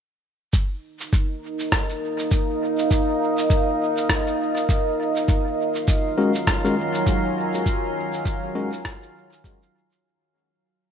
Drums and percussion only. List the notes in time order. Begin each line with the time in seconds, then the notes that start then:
0.53 kick, shaker
1.01 shaker
1.13 kick, shaker
1.60 shaker
1.72 kick, cross-stick, shaker
1.90 shaker
2.19 shaker
2.31 kick, shaker
2.79 shaker
2.91 kick, shaker
3.38 shaker
3.50 kick, shaker
3.97 shaker
4.09 kick, cross-stick, shaker
4.27 shaker
4.57 shaker
4.69 kick, shaker
5.16 shaker
5.28 kick, shaker
5.75 shaker
5.88 kick, shaker
6.35 shaker
6.47 kick, cross-stick, shaker
6.65 shaker
6.95 shaker
7.07 kick, shaker
7.54 shaker
7.66 kick, shaker
8.14 shaker
8.25 kick, shaker
8.73 shaker
8.85 kick, cross-stick, shaker
9.03 shaker
9.32 shaker
9.44 kick, shaker
9.63 shaker
9.92 shaker